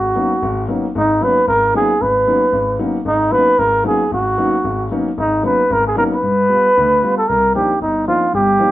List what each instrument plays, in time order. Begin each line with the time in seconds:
Already playing: grand piano G#1, muted trumpet F#4
0.16 grand piano F#3 A#3 B3 C#4 D#4
0.42 grand piano G#1
0.68 grand piano F#3 A#3 B3 C#4 D#4
0.95 grand piano G#1 G#2, muted trumpet D#4
1.21 grand piano F#3 A#3 B3 C#4 D#4, muted trumpet B4
1.47 grand piano G#1, muted trumpet A#4
1.74 grand piano F#3 A#3 B3 C#4 D#4, muted trumpet G#4
2.01 grand piano G#1, muted trumpet B4
2.27 grand piano F#3 A#3 B3 C#4 D#4
2.53 grand piano G#1
2.79 grand piano F#3 A#3 B3 C#4 D#4
3.05 grand piano G#1, muted trumpet D#4
3.31 grand piano F#3 A#3 B3 C#4 D#4, muted trumpet B4
3.59 grand piano G#1, muted trumpet A#4
3.84 grand piano F#3 A#3 B3 C#4 D#4, muted trumpet G#4
4.11 grand piano G#1, muted trumpet F#4
4.38 grand piano F#3 A#3 B3 C#4 D#4
4.64 grand piano G#1
4.91 grand piano F#3 A#3 B3 C#4 D#4
5.18 grand piano G#1, muted trumpet D#4
5.43 grand piano F#3 A#3 B3 C#4 D#4, muted trumpet B4
5.70 grand piano G#1, muted trumpet A#4
5.87 muted trumpet G#4
5.96 grand piano F#3 A#3 B3 C#4 D#4, muted trumpet A#4
6.14 muted trumpet B4
6.23 grand piano G2
6.50 grand piano G3 B3 F4
6.77 grand piano D2 D3
7.03 grand piano G3 B3 F4
7.18 muted trumpet A4
7.28 grand piano C2, muted trumpet A#4
7.55 grand piano F3 A#3 C4 D4 D#4, muted trumpet G4
7.81 grand piano G1, muted trumpet D#4
8.08 grand piano F3 A#3 C4 D4 D#4, muted trumpet F4
8.33 grand piano G1 G2, muted trumpet G4
8.59 grand piano F3 A#3 C4 D4 D#4